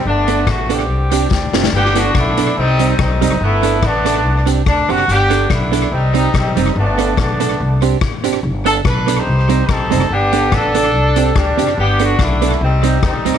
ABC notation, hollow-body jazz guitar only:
X:1
M:4/4
L:1/8
Q:1/4=143
K:G
V:1 name="Hollow-body jazz guitar"
z [B,DA] z [B,DA] z [CDG] z [CDG] | z [B,DA] z [B,DA] z [G,C_E] z [G,CE] | z [B,DA] z [B,DA] z [CDG] z [CDG] | z [B,DA] z [B,DA] z [G,C_E] z [G,CE] |
z [B,DA] z [B,DA] z [CDG] z [CDG] | z [B,DA] z [B,DA] z [G,C_E] z [G,CE] | z [B,DA] z [B,DA] z [CDG] z [CDG] | z [B,DA] z [B,DA] z [G,C_E] z [G,CE] |]